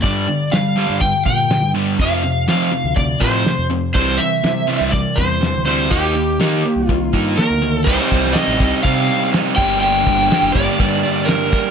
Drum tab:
CC |----------------|----------------|----------------|----------------|
HH |x---x---x---x---|x---x---x---x---|x---x---x---x---|x---x---x---x---|
SD |----o-------o---|----o-------o---|----o-------o---|----o-------o---|
BD |o-------o-o-----|o-------o-o-----|o-------o-o-----|o-------o-o-----|

CC |x---------------|----------------|
HH |--x-x-x-x-x-x-x-|x-x-x-x-x-x-x-x-|
SD |---oo-------o---|----o-------o---|
BD |o-o---o-o-----o-|--o---o-o-----o-|